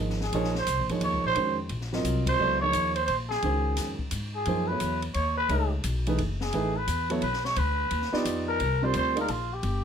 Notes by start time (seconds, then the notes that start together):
Already playing: G#1
0.00 F3 A#3 D#4 G#4 D#5
0.10 snare
0.21 G#4, snare
0.32 A#1 F3 A#3 D#4 G#4 C#5, ride
0.44 snare
0.55 C5, snare
0.67 C2, hi-hat pedal, ride
0.79 A#1
0.89 G#1 F3 A#3 D#4 G#4 C#5, ride
1.01 D#2 C#5, ride
1.13 C#2
1.24 A#1 C5
1.35 F2 D#3 G#3 C#4 F#4 C5, ride
1.69 A#1, ride
1.81 snare
1.92 F#3 C4 F4 A#4 D#5, snare
2.04 C2, hi-hat pedal, ride
2.26 C5, kick, ride
2.39 C#2 F#3 B3 E4 A4 D5
2.61 F3 A#3 D#4 G#4 C#5
2.73 D#2, hi-hat pedal, ride
2.94 C5, ride
3.05 A#1 C5, ride
3.29 G#4, snare
3.42 C#2 D#3 G#3 C#4 F#4 C5, ride
3.76 F2, snare, hi-hat pedal, ride
3.99 muted upright bass stroke, kick
4.11 G#2, hi-hat pedal, ride
4.35 G#4
4.45 F#2 F3 A#3 D#4 G#4 C5, ride
4.67 F#3 B3 E4 A4 B4
4.72 C#5
4.80 E2, hi-hat pedal, ride
5.02 ride
5.14 D#2 C#5, ride
5.37 B4
5.49 C#2 A3 D#4 G#4 C#5 E5, ride
5.83 B1, hi-hat pedal, ride
6.06 E3 A3 D#4 G#4 B4, ride
6.18 F#1, ride
6.41 G#4, snare
6.53 A1 E3 A3 D#4 G#4 B4, ride
6.76 B4
6.87 E2, hi-hat pedal, ride
7.10 F#3 B3 E4 A4 C#5, ride
7.22 B1 B4, ride
7.33 snare
7.45 C#5, snare
7.56 D2 B4, ride
7.91 D#2, ride
8.02 snare
8.12 B3 D#4 F4 G4 D5, muted upright bass stroke, snare
8.25 F2, hi-hat pedal, ride
8.48 A#4
8.60 C2, ride
8.82 G3 C4 F4 A#4 C5 D5
8.94 D2 C5, hi-hat pedal, ride
9.15 A#3 D#4 G#4 D5 F5, ride
9.20 A#4
9.28 A#1 F4, ride
9.53 G4
9.63 G1, ride